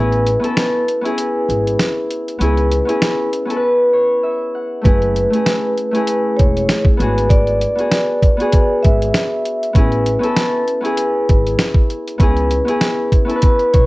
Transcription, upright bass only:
Already playing: A1
1.49 G#1
2.40 C#2
4.85 F#1
6.40 E1
7.00 G#1
8.85 G#1
9.75 A1
11.30 G#1
12.20 C#2
13.74 B1

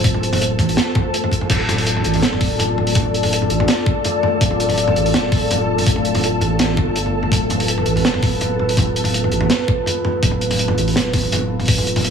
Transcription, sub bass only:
Already playing: D1
0.59 A1
1.50 D1
2.05 A1
2.23 D1
3.50 A1
4.41 D1
4.96 A1
5.14 D1
6.41 A1
6.77 F1
6.87 G1
7.32 D1
7.87 A1
8.05 D1
9.32 A1
10.23 D1
10.78 A1
10.96 D1

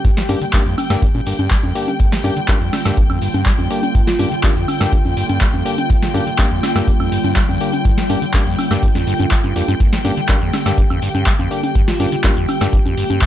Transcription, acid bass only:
0.05 G2
0.17 F3
0.29 G2
0.41 D3
0.53 G3
0.66 F2
0.90 G2
1.02 G1
1.15 A#2
1.27 G2
1.39 G2
1.51 G3
1.63 F2
2.00 G2
2.12 F3
2.24 G2
2.36 D3
2.48 G3
2.61 F2
2.85 G2
2.97 G1
3.10 F2
3.22 G2
3.34 G2
3.46 G3
3.59 F2
3.95 G2
4.07 F3
4.19 G2
4.32 D3
4.44 G3
4.56 F2
4.80 G2
4.92 G1
5.05 F2
5.17 G2
5.29 G2
5.41 G3
5.54 F2
5.90 G2
6.02 F3
6.14 G2
6.27 D3
6.39 G3
6.51 F2
6.76 G2
6.88 G1
7.00 F2
7.12 G2
7.24 G2
7.36 G3
7.49 F2
7.85 G2
7.98 F3
8.10 G2
8.22 D3
8.34 G3
8.46 F2
8.71 G2
8.83 G1
8.95 F2
9.07 G2
9.20 G2
9.32 G3
9.44 G2
9.56 F2
9.68 G2
9.80 G2
9.93 F3
10.05 G2
10.17 D3
10.29 G3
10.42 F2
10.66 G2
10.78 G1
10.90 F2
11.02 G2
11.15 G2
11.27 G3
11.39 F2
11.75 G2
11.88 F3
12.00 G2
12.12 D3
12.24 G3
12.37 F2
12.61 G2
12.73 G1
12.86 F2
12.97 G2
13.10 G2
13.22 G3

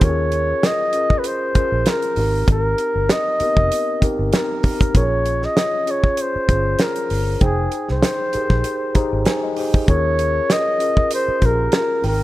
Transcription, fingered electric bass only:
0.01 D#2
1.55 muted fingered electric bass stroke
1.72 A#1
2.17 G#1
2.48 G#1
2.95 G1
3.40 muted fingered electric bass stroke
3.57 F1
4.02 muted fingered electric bass stroke
4.19 G1
4.95 A#1
6.36 muted fingered electric bass stroke
6.49 G1
7.11 G1
7.41 F1
7.90 C2
8.35 muted fingered electric bass stroke
8.50 A#1
8.95 muted fingered electric bass stroke
9.13 G#1
9.88 D#2
11.28 muted fingered electric bass stroke
11.42 A#1
12.04 G#1

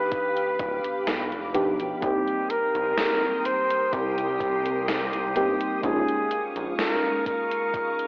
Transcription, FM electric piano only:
Already playing: F3 B3 D4 D#4 G4
1.54 F3 B3 D4 D#4 G4
2.01 G3 A#3 C4 D#4 G4
5.35 G3 A#3 C4 D#4 G4
5.82 G#3 A#3 C#4 D#4 F4

